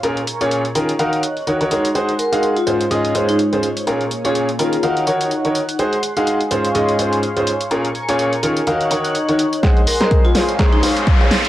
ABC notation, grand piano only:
X:1
M:4/4
L:1/16
Q:"Swing 16ths" 1/4=125
K:Db
V:1 name="Grand piano"
[B,,DFAB] z2 [B,,DFAd]2 z [E,DFAB] z [E,EGBf]2 z2 [E,EGBd] [E,EGBd] [A,EGBd] z | [A,EGAc] z2 [A,EGAf]2 z [A,,A,DFAc] z [A,,A,DFAe]2 [A,,A,DFAc]2 z [A,,A,DFAc] z2 | [B,,DFAB] z2 [B,,DFAd]2 z [E,DFAB] z [E,EGBf]2 [E,EGBd]2 z [E,EGBd] z2 | [A,EGAc] z2 [A,EGAf]2 z [A,,A,DFAc] z [A,,A,DFAe]2 [A,,A,DFAc]2 z [A,,A,DFAc] z2 |
[B,,DFAB] z2 [B,,DFAd]2 z [E,DFAB] z [E,EGBf]2 [E,EGBd]2 z [E,EGBd] z2 | [A,Aceg] z2 [A,Aceb]2 z [A,Acdf] z [A,Acdb]2 [A,Acdf]2 z [A,Acdf] z2 |]